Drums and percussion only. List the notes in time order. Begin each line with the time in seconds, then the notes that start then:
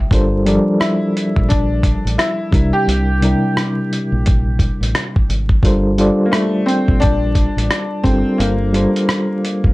0.11 kick, closed hi-hat
0.46 closed hi-hat
0.81 cross-stick, closed hi-hat
1.17 closed hi-hat
1.36 kick
1.50 kick, closed hi-hat
1.83 kick, closed hi-hat
2.07 closed hi-hat
2.19 cross-stick, closed hi-hat
2.53 kick, closed hi-hat
2.89 closed hi-hat
3.22 closed hi-hat
3.57 cross-stick, closed hi-hat
3.93 closed hi-hat
4.26 kick, closed hi-hat
4.59 kick, closed hi-hat
4.83 closed hi-hat
4.95 cross-stick, closed hi-hat
5.16 kick
5.30 closed hi-hat
5.49 kick
5.63 kick, closed hi-hat
5.98 closed hi-hat
6.33 cross-stick, closed hi-hat
6.69 closed hi-hat
6.88 kick
7.02 kick, closed hi-hat
7.35 kick, closed hi-hat
7.58 closed hi-hat
7.71 cross-stick, closed hi-hat
8.04 kick, closed hi-hat
8.40 closed hi-hat
8.74 closed hi-hat
8.96 closed hi-hat
9.09 cross-stick, closed hi-hat
9.45 closed hi-hat
9.64 kick